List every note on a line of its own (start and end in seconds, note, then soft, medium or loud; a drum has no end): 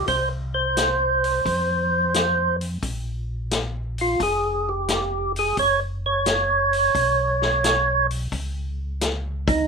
0.07 1.41 C2 medium
0.07 0.29 C5 medium
0.07 kick soft
0.07 open hi-hat soft
0.54 2.56 C5 medium
0.77 snare medium
0.77 closed hi-hat soft
1.24 open hi-hat soft
1.45 2.78 F2 medium
1.45 kick soft
1.45 open hi-hat soft
2.14 snare medium
2.14 closed hi-hat soft
2.61 open hi-hat soft
2.82 4.16 A#1 medium
2.82 kick soft
2.82 open hi-hat soft
3.51 snare medium
3.51 closed hi-hat soft
3.98 4.22 F4 medium
3.98 open hi-hat soft
4.20 5.53 F1 medium
4.20 4.69 G#4 medium
4.20 kick soft
4.20 open hi-hat soft
4.69 5.32 G4 medium
4.88 snare medium
4.88 closed hi-hat soft
5.36 5.57 G#4 medium
5.36 open hi-hat soft
5.57 6.90 F#1 medium
5.57 5.80 C#5 loud
5.57 kick soft
5.57 open hi-hat soft
6.06 8.07 C#5 medium
6.26 snare medium
6.26 closed hi-hat soft
6.73 open hi-hat soft
6.95 8.28 B1 medium
6.95 kick soft
6.95 open hi-hat soft
7.42 snare soft
7.64 snare medium
7.64 closed hi-hat soft
8.11 open hi-hat soft
8.32 9.65 C#2 medium
8.32 kick soft
8.32 open hi-hat soft
9.01 snare medium
9.01 closed hi-hat soft
9.48 9.68 D#4 medium
9.48 kick medium
9.48 open hi-hat soft